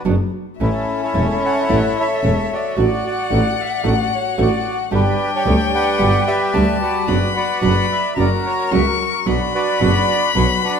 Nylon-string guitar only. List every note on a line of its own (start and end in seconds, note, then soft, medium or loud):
0.05 0.14 B2 medium
0.05 0.14 F#3 medium
0.05 0.15 B3 medium
0.05 0.15 D4 medium
0.05 0.15 F#4 medium
0.60 0.69 E3 medium
0.60 0.69 A3 medium
0.60 0.69 C#4 medium
0.60 0.69 E4 medium
1.14 1.24 E3 medium
1.14 1.24 A3 medium
1.14 1.24 C#4 medium
1.14 1.24 E4 medium
1.69 1.78 E3 medium
1.69 1.78 A3 medium
1.69 1.79 C#4 medium
1.69 1.79 E4 medium
2.23 2.32 E3 medium
2.23 2.32 A3 medium
2.23 2.33 C#4 medium
2.23 2.33 E4 medium
2.76 2.86 E3 medium
2.76 2.86 A3 medium
2.76 2.86 D4 medium
2.76 2.86 F#4 medium
3.30 3.40 E3 medium
3.30 3.40 A3 medium
3.30 3.40 D4 medium
3.30 3.40 F#4 medium
3.84 3.93 E3 medium
3.84 3.93 A3 medium
3.84 3.94 D4 medium
3.84 3.94 F#4 medium
4.38 4.47 E3 medium
4.38 4.47 A3 medium
4.38 4.48 D4 medium
4.38 4.48 F#4 medium
4.91 5.01 B2 medium
4.91 5.01 D3 medium
4.91 5.01 G3 medium
4.91 5.01 B3 medium
4.91 5.01 G4 medium
5.45 5.55 B2 medium
5.45 5.55 D3 medium
5.45 5.55 G3 medium
5.45 5.55 B3 medium
5.45 5.55 G4 medium
5.99 6.08 B2 medium
5.99 6.09 D3 medium
5.99 6.09 G3 medium
5.99 6.09 B3 medium
5.99 6.09 G4 medium
6.54 6.63 B2 medium
6.54 6.63 D3 medium
6.54 6.63 G3 medium
6.54 6.63 B3 medium
6.54 6.63 G4 medium
7.07 7.17 B2 medium
7.07 7.17 F#3 medium
7.07 7.17 B3 medium
7.07 7.17 D4 medium
7.07 7.17 F#4 medium
7.62 7.71 B2 medium
7.62 7.71 F#3 medium
7.62 7.71 B3 medium
7.62 7.71 D4 medium
7.62 7.71 F#4 medium
8.16 8.26 C#3 medium
8.16 8.26 F#3 medium
8.16 8.26 A#3 medium
8.16 8.26 C#4 medium
8.16 8.26 F#4 medium
8.71 8.80 C#3 medium
8.71 8.81 F#3 medium
8.71 8.81 A#3 medium
8.71 8.81 C#4 medium
8.71 8.81 F#4 medium
9.26 9.35 B2 medium
9.26 9.35 F#3 medium
9.26 9.35 B3 medium
9.26 9.36 D4 medium
9.26 9.36 F#4 medium
9.80 9.90 B2 medium
9.80 9.90 F#3 medium
9.80 9.90 B3 medium
9.80 9.90 D4 medium
9.80 9.90 F#4 medium
10.35 10.44 B2 medium
10.35 10.44 F#3 medium
10.35 10.45 B3 medium
10.35 10.45 D4 medium
10.35 10.45 F#4 medium